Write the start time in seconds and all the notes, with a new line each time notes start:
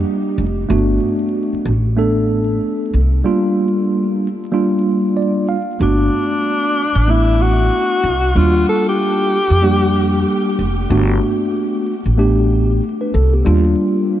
Already playing: G3 A#3 D4 G4
0.38 F1
0.69 G1 A3 B3 D4 F#4
1.53 muted upright bass stroke
1.65 A1
1.97 A3 B3 D4 A4
2.94 C2
3.24 G3 A#3 D4 F4
4.52 G3 A#3 D4 F4
5.17 D5
5.49 F5
5.80 G1 A3 B3 D4 F#4
6.95 A1
7.07 A3 B3 D4 E4
7.42 F#4
8.04 C2
8.35 D#2 G3 A#3 D4 F4
8.69 A4
8.89 G4
9.50 F2
9.62 G3 A#3 D4 G4
10.59 F1
10.90 G1 A3 B3 D4 F#4
12.06 A1
12.17 A3 B3 D4 G4
13.01 D4 B4
13.14 C2 A4
13.33 B3 G4
13.45 D#2 G3 A#3 D4 F4